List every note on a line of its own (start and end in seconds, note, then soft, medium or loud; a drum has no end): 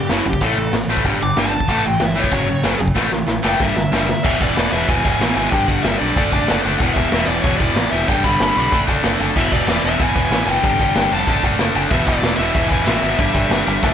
0.00 0.11 G4 loud
0.09 0.19 F#1 medium
0.09 0.25 F#2 medium
0.09 0.25 C#3 loud
0.09 0.25 F#3 medium
0.09 0.26 E4 medium
0.09 snare loud
0.09 crash medium
0.26 0.36 F#1 medium
0.26 0.40 F#2 medium
0.26 0.40 C#3 medium
0.26 0.43 G4 medium
0.33 kick medium
0.41 0.51 A1 loud
0.41 0.56 A2 medium
0.41 0.57 E3 medium
0.41 0.57 A3 loud
0.41 0.74 A4 loud
0.41 kick medium
0.41 crash medium
0.57 0.67 A1 medium
0.57 0.72 A2 medium
0.57 0.72 E3 medium
0.73 0.83 A1 medium
0.73 0.88 A2 medium
0.73 0.88 E3 medium
0.73 snare loud
0.73 crash medium
0.88 0.98 A1 medium
0.88 1.04 A2 loud
0.88 1.05 E3 medium
0.88 1.05 A3 loud
0.97 kick medium
1.04 1.15 G1 medium
1.04 1.20 G2 loud
1.04 1.20 D3 loud
1.04 1.21 G3 loud
1.04 kick loud
1.04 crash medium
1.21 1.31 G1 medium
1.21 1.35 G2 medium
1.21 1.35 D3 medium
1.21 1.38 D6 loud
1.36 1.56 G1 medium
1.36 1.51 G2 medium
1.36 1.52 D3 loud
1.36 1.53 G3 loud
1.36 1.85 A5 loud
1.36 snare loud
1.36 crash medium
1.52 1.67 G2 medium
1.52 1.67 D3 medium
1.60 kick medium
1.67 1.78 A1 loud
1.67 1.83 A2 medium
1.67 1.84 E3 medium
1.67 1.84 A3 loud
1.67 kick loud
1.67 crash medium
1.85 1.95 A1 medium
1.85 1.99 A2 medium
1.85 1.99 E3 loud
1.85 2.02 G5 loud
2.00 2.20 G1 medium
2.00 2.15 A2 medium
2.00 2.15 E3 medium
2.00 snare loud
2.00 crash medium
2.05 2.20 E5 loud
2.16 2.31 A2 medium
2.16 2.31 E3 medium
2.16 2.32 A3 loud
2.20 2.80 C#5 loud
2.24 kick medium
2.31 2.52 F#1 medium
2.31 2.46 F#2 medium
2.31 2.47 C#3 loud
2.31 2.48 F#3 loud
2.31 kick loud
2.31 crash medium
2.47 2.62 F#2 medium
2.47 2.63 C#3 medium
2.63 2.74 F#1 loud
2.63 2.79 F#2 loud
2.63 2.79 C#3 loud
2.63 2.80 F#3 loud
2.63 snare loud
2.63 crash medium
2.80 2.90 F#1 medium
2.80 2.95 F#2 medium
2.80 2.95 C#3 medium
2.88 kick medium
2.95 3.06 A1 loud
2.95 3.10 A2 medium
2.95 3.11 E3 medium
2.95 3.11 A3 loud
2.95 kick medium
2.95 snare medium
3.11 3.22 A1 medium
3.11 3.26 A2 medium
3.11 3.27 E3 medium
3.11 snare medium
3.28 3.38 A1 medium
3.28 3.42 A2 medium
3.28 3.42 E3 medium
3.28 snare medium
3.43 3.54 F#1 loud
3.43 3.59 A2 medium
3.43 3.59 E3 loud
3.43 3.59 A3 loud
3.43 3.61 G5 loud
3.43 snare medium
3.60 3.70 G1 medium
3.60 3.75 G2 loud
3.60 3.76 D3 loud
3.60 3.76 G3 loud
3.60 4.08 E5 medium
3.60 kick loud
3.60 snare medium
3.76 3.86 G1 medium
3.76 3.91 G2 medium
3.76 3.91 D3 medium
3.76 snare medium
3.92 4.12 F#1 loud
3.92 4.07 G2 loud
3.92 4.07 D3 loud
3.92 4.08 G3 loud
3.92 snare loud
4.08 4.23 G2 medium
4.08 4.23 D3 medium
4.08 4.23 E5 loud
4.08 snare medium
4.24 4.35 E1 loud
4.24 4.40 E2 loud
4.24 4.39 B2 loud
4.24 4.39 E3 medium
4.24 4.42 E5 medium
4.24 kick loud
4.24 crash loud
4.40 4.51 E1 medium
4.40 4.55 E2 medium
4.40 4.55 B2 medium
4.40 4.56 E3 loud
4.40 4.72 D5 medium
4.40 kick loud
4.56 4.67 E1 medium
4.56 4.72 E2 loud
4.56 4.71 B2 loud
4.56 4.71 E3 loud
4.56 snare loud
4.56 open hi-hat medium
4.72 4.83 E1 loud
4.72 4.86 E2 medium
4.72 4.87 B2 medium
4.72 4.88 E3 loud
4.72 4.87 E5 medium
4.88 4.99 E1 medium
4.88 5.04 E2 loud
4.88 5.03 B2 loud
4.88 5.03 E3 loud
4.88 5.33 G#5 medium
4.88 kick loud
4.88 open hi-hat medium
5.04 5.15 E1 medium
5.04 5.19 E2 medium
5.04 5.19 B2 medium
5.04 5.20 E3 loud
5.04 kick loud
5.20 5.31 A1 medium
5.20 5.36 E2 loud
5.20 5.35 B2 loud
5.20 5.35 E3 loud
5.20 snare loud
5.20 open hi-hat medium
5.35 5.47 G#1 medium
5.35 5.51 E2 medium
5.35 5.51 B2 medium
5.35 5.51 E3 loud
5.35 5.50 G#5 loud
5.51 5.63 G1 loud
5.51 5.68 G2 medium
5.51 5.68 D3 loud
5.51 5.67 G3 loud
5.51 5.67 G5 loud
5.51 kick loud
5.51 open hi-hat medium
5.67 5.79 G1 medium
5.67 5.83 G2 medium
5.67 5.84 D3 medium
5.67 5.85 G3 loud
5.67 5.84 F#5 medium
5.67 kick loud
5.83 5.95 G1 loud
5.83 6.00 G2 medium
5.83 5.99 D3 loud
5.83 5.98 G3 loud
5.83 5.98 E5 medium
5.83 snare loud
5.83 open hi-hat medium
5.99 6.12 B1 medium
5.99 6.15 G2 medium
5.99 6.15 D3 medium
5.99 6.15 G3 medium
5.99 6.59 D5 loud
6.16 6.27 F#1 loud
6.16 6.33 D3 medium
6.16 6.32 A3 loud
6.16 6.31 D4 loud
6.16 kick loud
6.16 open hi-hat medium
6.32 6.43 F#1 medium
6.32 6.48 D3 medium
6.32 6.48 A3 medium
6.32 6.49 D4 loud
6.32 kick medium
6.48 6.60 F#1 medium
6.48 6.65 D3 medium
6.48 6.65 A3 loud
6.48 6.64 D4 loud
6.48 snare loud
6.48 open hi-hat medium
6.65 6.75 F#1 medium
6.65 6.80 D3 medium
6.65 6.80 A3 medium
6.65 6.79 D4 medium
6.79 6.91 E1 loud
6.79 6.97 E2 loud
6.79 6.96 B2 loud
6.79 6.95 E3 loud
6.79 6.93 F#5 loud
6.79 kick loud
6.79 open hi-hat medium
6.93 7.07 E1 medium
6.93 7.12 B2 loud
6.93 7.12 E3 loud
6.93 7.07 E5 loud
6.93 kick loud
6.98 7.11 E2 medium
7.09 7.22 E1 medium
7.09 7.28 E2 loud
7.09 7.27 E5 loud
7.09 snare loud
7.09 open hi-hat medium
7.13 7.28 B2 loud
7.13 7.27 E3 loud
7.26 7.38 E1 medium
7.26 7.43 E2 medium
7.26 7.44 B2 medium
7.26 7.44 E3 loud
7.26 7.41 D5 medium
7.41 7.54 E1 loud
7.41 7.60 E2 loud
7.41 7.60 B2 loud
7.41 7.57 C#5 medium
7.41 kick loud
7.41 open hi-hat medium
7.45 7.59 E3 loud
7.57 7.71 E1 medium
7.57 7.75 B2 medium
7.57 7.76 E3 loud
7.57 7.91 D5 loud
7.57 kick medium
7.61 7.75 E2 medium
7.76 7.86 A1 medium
7.76 7.91 E2 loud
7.76 7.91 B2 loud
7.76 7.91 E3 loud
7.76 snare loud
7.76 open hi-hat medium
7.91 8.03 E1 medium
7.91 8.07 E2 medium
7.91 8.07 B2 medium
7.91 8.07 E3 medium
7.91 8.08 E5 loud
8.08 8.19 G1 loud
8.08 8.25 G2 loud
8.08 8.24 D3 loud
8.08 8.23 G3 loud
8.08 8.24 G5 loud
8.08 kick loud
8.08 open hi-hat medium
8.24 8.34 G1 medium
8.24 8.40 G2 medium
8.24 8.40 D3 loud
8.24 8.41 G3 loud
8.24 8.84 B5 loud
8.24 kick loud
8.40 8.51 G1 medium
8.40 8.57 G2 medium
8.40 8.57 D3 loud
8.40 8.56 G3 loud
8.40 snare loud
8.40 open hi-hat medium
8.57 8.67 B1 medium
8.57 8.72 G2 medium
8.57 8.72 D3 medium
8.57 8.71 G3 medium
8.72 8.83 F#1 loud
8.72 8.88 D3 medium
8.72 8.87 A3 loud
8.72 8.87 D4 loud
8.72 kick loud
8.72 open hi-hat medium
8.88 8.98 F#1 medium
8.88 9.03 D3 medium
8.88 9.03 A3 medium
8.88 9.04 D4 loud
8.88 kick loud
9.04 9.14 F#1 loud
9.04 9.20 D3 loud
9.04 9.20 A3 medium
9.04 9.19 D4 loud
9.04 snare loud
9.04 open hi-hat medium
9.20 9.31 F#1 medium
9.20 9.35 D3 medium
9.20 9.35 A3 loud
9.20 9.35 D4 medium
9.36 9.47 E1 loud
9.36 9.53 E2 medium
9.36 9.52 B2 loud
9.36 9.51 E3 loud
9.36 9.52 E5 medium
9.36 kick loud
9.36 crash loud
9.52 9.62 E1 medium
9.52 9.67 E2 medium
9.52 9.67 B2 medium
9.52 9.68 E3 loud
9.52 9.85 D5 medium
9.52 kick medium
9.68 9.78 E1 medium
9.68 9.83 E2 medium
9.68 9.83 B2 loud
9.68 9.83 E3 loud
9.68 snare loud
9.68 open hi-hat medium
9.84 9.94 E1 medium
9.84 9.98 E2 medium
9.84 9.98 B2 medium
9.84 9.99 E3 loud
9.84 10.01 E5 medium
9.99 10.10 E1 medium
9.99 10.15 E2 loud
9.99 10.14 B2 loud
9.99 10.13 E3 loud
9.99 10.49 G#5 medium
9.99 kick loud
9.99 open hi-hat medium
10.15 10.26 E1 medium
10.15 10.29 E2 medium
10.15 10.30 B2 medium
10.15 10.30 E3 loud
10.15 kick medium
10.31 10.42 A1 medium
10.31 10.47 E2 medium
10.31 10.47 B2 medium
10.31 10.46 E3 loud
10.31 snare loud
10.31 open hi-hat medium
10.47 10.57 F#1 medium
10.47 10.62 E2 medium
10.47 10.63 B2 medium
10.47 10.63 E3 loud
10.47 11.13 G5 loud
10.62 10.74 G1 loud
10.62 10.79 G2 medium
10.62 10.79 D3 loud
10.62 10.78 G3 loud
10.62 kick loud
10.62 open hi-hat medium
10.79 10.90 G1 medium
10.79 10.95 G2 medium
10.79 10.95 D3 medium
10.79 10.96 G3 loud
10.79 kick loud
10.95 11.06 G1 medium
10.95 11.11 G2 medium
10.95 11.11 D3 loud
10.95 11.10 G3 loud
10.95 snare loud
10.95 open hi-hat medium
11.12 11.22 F1 medium
11.12 11.27 G2 medium
11.12 11.26 D3 medium
11.12 11.27 G3 loud
11.12 11.42 A5 loud
11.27 11.38 F#1 loud
11.27 11.44 D3 loud
11.27 11.44 A3 loud
11.27 11.43 D4 loud
11.27 kick loud
11.27 open hi-hat medium
11.43 11.54 F#1 medium
11.43 11.59 D3 medium
11.43 11.59 A3 medium
11.43 11.59 D4 loud
11.43 kick medium
11.59 11.70 F#1 loud
11.59 11.75 D3 medium
11.59 11.75 A3 loud
11.59 11.74 D4 loud
11.59 snare loud
11.59 open hi-hat medium
11.75 11.86 F#1 medium
11.75 11.91 D3 medium
11.75 11.91 A3 medium
11.75 11.90 D4 loud
11.90 12.02 E1 loud
11.90 12.08 E2 loud
11.90 12.07 B2 loud
11.90 12.06 E3 loud
11.90 12.06 E5 loud
11.90 kick loud
11.90 open hi-hat medium
12.07 12.18 E1 medium
12.07 12.22 E2 medium
12.07 12.23 B2 medium
12.07 12.24 E3 loud
12.07 12.36 D5 loud
12.07 kick loud
12.22 12.33 E1 loud
12.22 12.40 E2 loud
12.22 12.39 B2 loud
12.22 12.39 E3 loud
12.22 snare loud
12.22 open hi-hat medium
12.37 12.49 E1 loud
12.37 12.55 E3 loud
12.37 12.71 E5 loud
12.41 12.54 E2 medium
12.41 12.55 B2 medium
12.55 12.66 E1 loud
12.55 12.70 E2 loud
12.55 12.70 B2 loud
12.55 12.69 E3 loud
12.55 kick loud
12.55 open hi-hat medium
12.68 12.82 E1 medium
12.68 12.86 E2 medium
12.68 12.86 B2 medium
12.68 12.87 E3 loud
12.68 12.86 G#5 loud
12.68 kick loud
12.84 12.98 A1 loud
12.84 13.02 E2 medium
12.84 13.02 B2 loud
12.84 13.02 E3 loud
12.84 13.94 E5 medium
12.84 snare loud
12.84 open hi-hat medium
13.02 13.13 G#1 medium
13.02 13.18 E2 medium
13.02 13.18 B2 medium
13.02 13.18 E3 loud
13.18 13.29 G1 loud
13.18 13.34 G2 loud
13.18 13.34 D3 loud
13.18 13.33 G3 loud
13.18 kick loud
13.18 open hi-hat medium
13.34 13.46 G1 medium
13.34 13.50 G2 medium
13.34 13.50 D3 medium
13.34 13.51 G3 loud
13.34 kick medium
13.50 13.61 G1 medium
13.50 13.67 G2 medium
13.50 13.67 D3 loud
13.50 13.66 G3 loud
13.50 snare loud
13.50 open hi-hat medium
13.67 13.78 G1 loud
13.67 13.83 G2 medium
13.67 13.82 D3 medium
13.67 13.82 G3 loud
13.83 13.94 F#1 loud
13.83 13.94 D3 loud
13.83 13.94 A3 loud
13.83 13.94 D4 loud
13.83 kick loud
13.83 snare medium